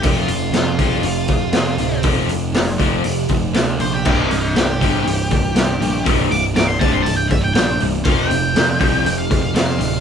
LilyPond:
<<
  \new Staff \with { instrumentName = "Lead electric guitar" } { \time 4/4 \key f \major \tempo 4 = 120 g'16 f'8. f'2. | r2. r8 c''16 g'16~ | g'16 ees'8. g'2. | r8 d'''16 r16 d'''16 c'''16 a''16 c'''16 a''16 g''16 e''16 g''16 g''8 r8 |
f''16 g''2 f''8 f''16 f''4 | }
  \new Staff \with { instrumentName = "Distorted electric guitar" } { \clef bass \time 4/4 \key f \major <f, c f>8 <f, c>8 <f, c>8 <f, c f>8 <f, c>8 <f, c>8 <f, c>8 <f, c>8 | <f, c f>8 <f, c>8 <f, c>8 <f, c f>8 <f, c>8 <f, c>8 <f, c>8 <f, c>8 | <c, g, c>8 <c, g,>8 <c, g,>8 <c, g, c>8 <c, g,>8 <c, g,>8 <c, g,>8 <c, g,>8 | <c, g, c>8 <c, g,>8 <c, g,>8 <c, g, c>8 <c, g,>8 <c, g,>8 <c, g,>8 <c, g,>8 |
<f, c f>8 <f, c>8 <f, c>8 <f, c f>8 <f, c>8 <f, c>8 <f, c>8 <f, c>8 | }
  \new Staff \with { instrumentName = "Overdriven electric guitar" } { \clef bass \time 4/4 \key f \major <f, c f>8 <f, c>8 <f, c>8 <f, c f>8 <f, c>8 <f, c>8 <f, c>8 <f, c>8 | <f, c f>8 <f, c>8 <f, c>8 <f, c f>8 <f, c>8 <f, c>8 <f, c>8 <f, c>8 | <c, g, c>8 <c, g,>8 <c, g,>8 <c, g, c>8 <c, g,>8 <c, g,>8 <c, g,>8 <c, g,>8 | <c, g, c>8 <c, g,>8 <c, g,>8 <c, g, c>8 <c, g,>8 <c, g,>8 <c, g,>8 <c, g,>8 |
<f, c f>8 <f, c>8 <f, c>8 <f, c f>8 <f, c>8 <f, c>8 <f, c>8 <f, c>8 | }
  \new Staff \with { instrumentName = "Picked electric bass" } { \clef bass \time 4/4 \key f \major f,,8 f,,8 f,8 c,8 f,,8 f,,8 f,8 d,,8 | f,,8 f,,8 f,,4 f,,8 f,,8 d,8 bes,,8 | c,,8 c,,8 c,8 g,,8 c,,8 c,,8 c,8 bes,,8 | c,,8 c,,8 c,,4 c,,8 c,,8 bes,,8 c,,8 |
f,,8 f,,8 f,8 c,8 f,,8 f,,8 f,8 d,,8 | }
  \new DrumStaff \with { instrumentName = "Drums" } \drummode { \time 4/4 <hho bd>8 hho8 <hho sn>8 <hho bd>8 hho8 <hho bd>8 <hho sn>8 hho8 | <hho bd>8 hho8 <hho sn>8 <hho bd>8 hho8 <hho bd>8 <hho sn>8 hho8 | <cymc bd>8 hho8 <hho sn>8 <hho bd>8 hho8 <hho bd>8 <hho sn>8 hho8 | <hho bd>8 hho8 <hho sn>8 <hho bd>8 hho8 <hho bd>8 <hho sn>8 hho8 |
<hho bd>8 hho8 <hho sn>8 <hho bd>8 hho8 <hho bd>8 <hho sn>8 hho8 | }
>>